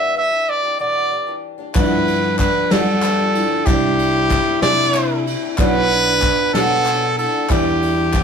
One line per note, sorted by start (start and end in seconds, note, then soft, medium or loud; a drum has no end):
0.00 0.16 E2 medium
0.00 0.16 B2 loud
0.00 0.14 E3 medium
0.00 0.15 G3 loud
0.00 0.16 D4 medium
0.00 0.16 G4 loud
0.00 0.17 E5 loud
0.15 0.31 E3 medium
0.15 0.31 G3 medium
0.15 0.30 D4 medium
0.15 0.29 G4 medium
0.15 0.51 E5 loud
0.30 0.64 E3 soft
0.30 0.63 G3 soft
0.30 0.63 D4 medium
0.30 0.62 G4 medium
0.50 0.79 D5 loud
0.63 0.78 E3 soft
0.63 0.78 G3 soft
0.63 0.79 D4 medium
0.63 0.79 G4 medium
0.79 1.11 E2 medium
0.79 1.11 B2 medium
0.79 1.09 E3 medium
0.79 1.10 G3 medium
0.79 1.10 D4 medium
0.79 1.12 G4 medium
0.79 1.40 D5 loud
1.11 1.27 E3 medium
1.11 1.27 G3 medium
1.11 1.26 D4 medium
1.11 1.25 G4 medium
1.27 1.59 E3 soft
1.27 1.59 G3 medium
1.27 1.57 D4 medium
1.27 1.57 G4 medium
1.58 1.75 E3 soft
1.58 1.75 G3 soft
1.58 1.75 D4 medium
1.58 1.75 G4 medium
1.74 3.63 G1 medium
1.74 2.07 G2 medium
1.74 3.63 G2 medium
1.74 2.47 G2 loud
1.74 2.07 D3 medium
1.74 2.35 F3 medium
1.74 2.05 F3 medium
1.74 2.35 G3 medium
1.74 2.06 G3 medium
1.74 2.07 B3 loud
1.74 2.35 D4 medium
1.74 2.31 E4 loud
1.74 2.07 G4 medium
1.74 2.35 B4 medium
1.74 2.35 B4 loud
1.74 2.35 D5 medium
1.74 kick loud
1.74 clap loud
1.74 ride medium
1.91 clap soft
2.06 2.23 F3 medium
2.06 2.22 G3 medium
2.06 2.22 B3 medium
2.06 2.22 G4 medium
2.06 ride medium
2.23 2.55 F3 soft
2.23 2.55 G3 soft
2.23 2.54 B3 medium
2.23 2.54 G4 medium
2.31 2.39 E4 medium
2.38 3.67 D4 loud
2.38 2.73 B4 loud
2.38 kick medium
2.38 clap loud
2.38 ride medium
2.55 2.70 F3 soft
2.55 2.70 G3 soft
2.55 2.70 B3 medium
2.55 2.70 G4 medium
2.70 3.03 G2 medium
2.70 3.03 D3 medium
2.70 3.01 F3 medium
2.70 3.30 G3 medium
2.70 3.02 G3 medium
2.70 3.43 G3 loud
2.70 3.02 B3 medium
2.70 3.31 D4 medium
2.70 3.34 D4 medium
2.70 3.31 F4 medium
2.70 3.03 G4 medium
2.70 3.67 A4 loud
2.70 3.31 B4 medium
2.70 3.31 D5 medium
2.70 snare loud
2.70 ride medium
3.02 3.18 F3 medium
3.02 3.19 G3 medium
3.02 3.18 B3 medium
3.02 3.17 G4 medium
3.02 clap medium
3.02 ride medium
3.18 3.51 F3 soft
3.18 3.50 G3 soft
3.18 3.49 B3 medium
3.18 3.48 G4 soft
3.35 3.66 E4 medium
3.35 ride medium
3.50 3.66 F3 soft
3.50 3.65 G3 medium
3.50 3.67 B3 medium
3.50 3.66 G4 medium
3.66 4.39 C2 loud
3.66 5.54 C2 medium
3.66 3.98 C3 medium
3.66 5.55 C3 medium
3.66 4.26 G3 medium
3.66 3.97 G3 medium
3.66 3.98 C4 medium
3.66 4.27 C4 medium
3.66 4.27 D4 medium
3.66 3.99 D4 medium
3.66 5.60 E4 loud
3.66 4.29 E4 medium
3.66 4.62 G4 loud
3.66 3.99 G4 loud
3.66 4.27 C5 medium
3.66 4.27 D5 loud
3.66 kick loud
3.66 clap medium
3.66 ride medium
3.83 clap soft
3.98 4.14 G3 medium
3.98 4.13 D4 medium
3.98 ride medium
4.14 4.47 C4 medium
4.14 4.46 D4 medium
4.14 4.45 G4 medium
4.31 kick medium
4.31 clap loud
4.31 ride medium
4.46 4.63 C4 soft
4.46 4.63 D4 medium
4.46 4.62 G4 medium
4.62 5.34 C3 loud
4.62 4.95 C3 medium
4.62 5.22 G3 medium
4.62 4.92 G3 medium
4.62 5.22 C4 medium
4.62 4.94 C4 medium
4.62 5.25 D4 medium
4.62 5.23 D4 medium
4.62 4.94 D4 medium
4.62 4.94 G4 loud
4.62 5.23 C5 medium
4.62 5.22 D5 loud
4.62 5.23 D5 medium
4.62 snare loud
4.62 ride medium
4.94 5.10 D4 medium
4.94 5.09 G4 medium
4.94 clap loud
4.94 ride medium
5.10 5.42 C4 soft
5.10 5.41 D4 medium
5.10 5.40 G4 medium
5.26 5.57 E4 medium
5.26 ride medium
5.41 5.58 C4 soft
5.41 5.58 D4 medium
5.41 5.58 G4 medium
5.58 7.46 B1 medium
5.58 6.30 B1 loud
5.58 7.46 B2 medium
5.58 5.90 B2 medium
5.58 6.18 F#3 medium
5.58 5.89 F#3 medium
5.58 6.18 B3 medium
5.58 5.89 B3 medium
5.58 6.91 D4 loud
5.58 6.18 D4 medium
5.58 5.90 D4 loud
5.58 6.21 E4 medium
5.58 5.91 F#4 loud
5.58 6.50 B4 loud
5.58 6.18 B4 medium
5.58 6.18 D5 loud
5.58 kick loud
5.58 clap loud
5.58 ride medium
5.74 clap soft
5.90 6.06 F#3 medium
5.90 6.06 B3 medium
5.90 6.05 D4 medium
5.90 ride medium
6.05 6.38 B3 soft
6.05 6.37 D4 soft
6.05 6.36 F#4 medium
6.22 kick medium
6.22 clap loud
6.22 ride medium
6.37 6.52 B3 soft
6.37 6.53 D4 medium
6.37 6.53 F#4 medium
6.53 6.85 B2 medium
6.53 7.26 B2 loud
6.53 7.13 F#3 medium
6.53 6.85 F#3 medium
6.53 7.13 B3 medium
6.53 6.85 B3 medium
6.53 7.13 D4 medium
6.53 6.86 D4 loud
6.53 7.17 D4 medium
6.53 6.86 F#4 medium
6.53 7.14 A4 loud
6.53 7.14 B4 medium
6.53 7.14 D5 medium
6.53 snare loud
6.53 ride medium
6.86 7.02 F#3 medium
6.86 7.02 B3 medium
6.86 7.00 F#4 medium
6.86 clap loud
6.86 ride medium
7.01 7.33 B3 soft
7.01 7.32 D4 medium
7.01 7.32 F#4 medium
7.18 7.50 D4 loud
7.18 7.49 E4 medium
7.18 7.53 A4 loud
7.18 ride medium
7.33 7.49 B3 soft
7.33 7.48 D4 medium
7.33 7.49 F#4 medium
7.48 7.81 E2 medium
7.48 8.23 E2 medium
7.48 8.22 E2 loud
7.48 7.81 B2 medium
7.48 7.80 E3 medium
7.48 8.23 E3 medium
7.48 7.80 G3 medium
7.48 8.10 G3 medium
7.48 7.81 D4 medium
7.48 8.10 D4 medium
7.48 8.17 E4 loud
7.48 7.82 E4 medium
7.48 8.13 E4 loud
7.48 8.10 E4 medium
7.48 8.23 G4 medium
7.48 8.10 B4 medium
7.48 8.10 D5 medium
7.48 kick loud
7.48 clap medium
7.48 ride medium
7.81 7.97 E3 medium
7.81 7.97 G3 medium
7.81 7.96 D4 medium
7.81 7.95 E4 medium
7.81 ride medium
7.96 8.23 E3 soft
7.96 8.23 G3 soft
7.96 8.23 D4 medium
7.96 8.23 E4 medium
8.13 8.23 B3 medium
8.13 kick medium
8.13 clap loud
8.13 ride medium